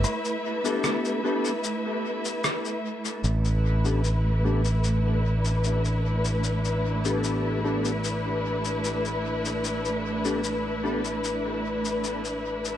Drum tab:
SH |xx-xxx-xx--xxx-x|xx-xx--xx--xxx-x|xx-xx--xx--xxx-x|xx-xx--xx--xxx-x|
SD |----r-------r---|----------------|----------------|----------------|